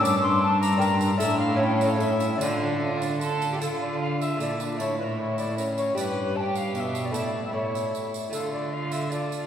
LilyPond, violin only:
\new Staff \with { instrumentName = "Violin" } { \time 3/4 \key d \minor \tempo 4 = 152 d'2 d'4 | d'4 cis'4 cis'8 e'8 | f'4 f'4 a'8. g'16 | f'2 e'8 d'8 |
e'2 cis'4 | g'4 g'2 | e'4 e'4. r8 | f'4 f'4 f'4 | }